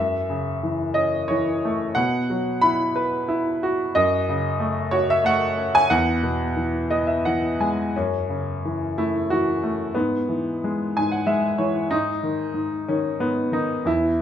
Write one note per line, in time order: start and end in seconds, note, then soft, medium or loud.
0.00 1.92 F#2 soft
0.00 1.00 E5 medium
0.30 1.60 C#3 soft
0.63 1.29 E3 soft
0.94 1.93 C#4 soft
0.94 1.27 D#5 medium
1.28 1.95 E3 soft
1.28 1.97 C#5 medium
1.65 1.96 A3 soft
1.95 3.90 B2 medium
1.95 2.57 F#5 medium
2.30 3.58 F#3 soft
2.62 3.27 E4 soft
2.62 3.57 B5 medium
2.96 3.92 B4 medium
3.28 3.93 E4 medium
3.63 3.95 F#4 medium
3.95 5.87 F#2 medium
3.95 4.96 D#5 medium
4.29 5.55 C#3 soft
4.60 5.23 A3 soft
4.91 5.88 F#4 medium
4.91 5.09 C#5 medium
5.10 5.25 E5 medium
5.24 5.88 A3 medium
5.24 5.76 F#5 medium
5.58 5.90 C#4 soft
5.75 5.92 G#5 medium
5.90 7.90 E2 medium
5.90 7.21 F#5 medium
6.23 7.56 B2 soft
6.57 7.24 E3 soft
6.91 7.91 B3 soft
6.91 7.07 D#5 medium
7.07 7.24 E5 soft
7.25 7.92 E3 soft
7.25 7.58 F#5 medium
7.60 7.93 G#3 soft
7.60 7.92 G#5 soft
7.96 9.92 F#2 soft
7.96 9.00 C#4 medium
8.29 9.58 C#3 soft
8.65 9.31 E3 soft
8.98 9.62 A3 soft
8.98 9.31 E4 medium
9.30 9.94 E3 soft
9.30 9.97 F#4 medium
9.63 9.95 A3 soft
9.95 10.96 G#2 soft
9.95 10.90 B3 medium
10.29 11.56 E3 soft
10.64 11.25 G#3 soft
10.97 11.90 G#2 soft
10.97 11.11 G#5 medium
11.12 11.26 F#5 soft
11.27 11.90 G#3 soft
11.27 11.57 E5 medium
11.58 11.90 E3 soft
11.58 11.89 C#5 medium
11.91 12.52 G#2 medium
11.91 12.83 D#4 medium
12.23 12.87 D#3 soft
12.54 13.18 G#2 soft
12.88 13.50 D#3 soft
12.88 13.21 C#4 medium
13.20 13.84 G#2 soft
13.20 13.51 B3 medium
13.52 13.84 D#3 soft
13.52 13.84 D#4 medium
13.85 14.22 E2 soft
13.85 14.22 E4 medium